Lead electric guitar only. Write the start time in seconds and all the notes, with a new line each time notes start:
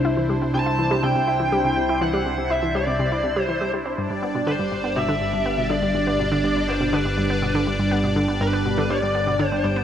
0.54 A5
1.04 G5
2.02 F#5
2.52 E5
2.76 D5
3.42 C5
4.47 C5
4.96 E5
5.71 D5
6.69 C5
6.94 B4
8.41 B4
8.90 D5
9.46 C5
9.64 C5